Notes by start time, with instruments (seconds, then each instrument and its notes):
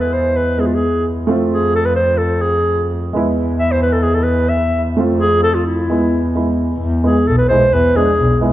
Already playing: double bass E2, upright piano G#3 B3 E4
0.00 clarinet B4
0.13 clarinet C5
0.37 clarinet B4
0.58 upright piano G#3 B3 E4, clarinet G#4
0.66 clarinet F4
0.74 clarinet G#4
1.27 double bass F2, upright piano A3 C4 F4
1.52 clarinet G#4
1.75 clarinet A4
1.85 clarinet B4
1.96 clarinet C5
2.17 clarinet A4
2.41 clarinet G#4
3.13 double bass E2, upright piano G#3 B3 E4
3.59 clarinet E5
3.71 clarinet C5
3.82 clarinet B4
3.92 clarinet A4
4.03 clarinet G#4
4.14 clarinet A4
4.23 clarinet B4
4.49 clarinet E5
4.96 double bass F2, upright piano A3 C4 F4
5.20 clarinet G#4
5.43 clarinet A4
5.54 clarinet F4
5.66 clarinet E4
5.87 double bass E2, upright piano G#3 B3
5.91 upright piano E4
6.35 upright piano G#3 B3 E4
6.81 double bass E2
7.04 upright piano G#3 B3 E4, clarinet G#4
7.27 double bass B1, clarinet A4
7.38 clarinet B4
7.48 upright piano G#3 B3, clarinet C5
7.52 upright piano E4
7.73 double bass E2, clarinet B4
7.96 upright piano G#3 B3 D4, clarinet G#4
8.20 double bass B1
8.41 upright piano G#3 B3 E4